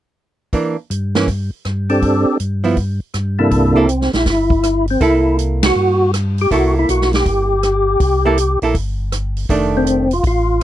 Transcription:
0.53 E3 A#3 D4, kick, open hi-hat
0.90 G2, closed hi-hat
1.15 E3 A#3 C#4, snare, open hi-hat
1.28 kick, open hi-hat
1.65 G2, cross-stick, closed hi-hat
1.89 C4 D4 G4 A4, open hi-hat
2.02 kick, open hi-hat
2.40 G2, closed hi-hat
2.64 F3 B3 E4, open hi-hat
2.77 kick, open hi-hat
3.14 G2, cross-stick, closed hi-hat
3.39 C3 A#3 D4 E4 A4
3.51 C2, kick, open hi-hat
3.76 A#3 C4 E4 A4
3.89 closed hi-hat
4.01 snare
4.13 A#1 E4, snare, open hi-hat
4.26 G1, kick, snare, open hi-hat
4.30 E4
4.50 kick
4.63 cross-stick, closed hi-hat
4.88 C4, open hi-hat
5.01 C2 A#3 E4 A4, kick, open hi-hat
5.39 closed hi-hat
5.63 F#4, snare, ride
5.76 G2
6.14 cross-stick, closed hi-hat
6.38 G4, open hi-hat
6.51 C2 A#3 E4 F#4 A4, kick, open hi-hat
6.79 E4
6.89 B1 F#4, closed hi-hat
7.01 snare
7.13 G4, snare, open hi-hat
7.26 G1, kick, open hi-hat
7.63 cross-stick, closed hi-hat
8.00 C2, kick, open hi-hat
8.25 A#3 E4 A4
8.38 closed hi-hat
8.62 A#1 A#3 E4 A4, open hi-hat
8.74 G1, kick, open hi-hat
9.12 cross-stick, closed hi-hat
9.37 open hi-hat
9.49 F1 D#3 A3 D4, kick, open hi-hat
9.77 C4
9.87 closed hi-hat
10.11 F4, open hi-hat
10.24 A1 F4, kick, open hi-hat

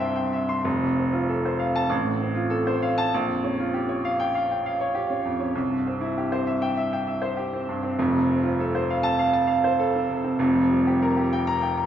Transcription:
Already playing: G2 G5 C6
0.00 C4 E5
0.16 G5
0.33 E5
0.49 C6
0.64 F1
0.82 C2
0.97 C4
1.13 F4
1.29 A4
1.45 C5
1.59 F5
1.76 A5
1.90 A1
2.04 A2
2.21 C4
2.35 F4
2.50 A4
2.67 C5
2.82 F5
2.98 A5
3.14 A#1
3.29 F2
3.44 C#4
3.60 F4
3.74 G4
3.89 C#5
4.05 F5
4.20 G5
4.35 F5
4.51 G5
4.66 F5
4.81 C#5
4.95 G4
5.10 C#4
5.25 F2
5.40 C#4
5.55 C2
5.70 G2
5.87 C4
6.01 E4
6.18 G4
6.32 C5
6.47 E5
6.62 G5
6.77 E5
6.93 G5
7.07 E5
7.22 C5
7.37 G4
7.53 C4
7.69 G2
7.83 C4
7.99 F1 F2
8.14 C3
8.29 C4
8.43 F4
8.60 A4
8.75 C5
8.90 F5
9.03 A5
9.19 F5
9.33 A5
9.47 F5
9.64 C5
9.79 A4
9.96 C4
10.10 C3
10.24 C4
10.39 F1 F2
10.55 F3
10.71 G3
10.87 G4
11.02 A#4
11.17 G4
11.33 G5
11.47 A#5
11.62 G5
11.78 A#5

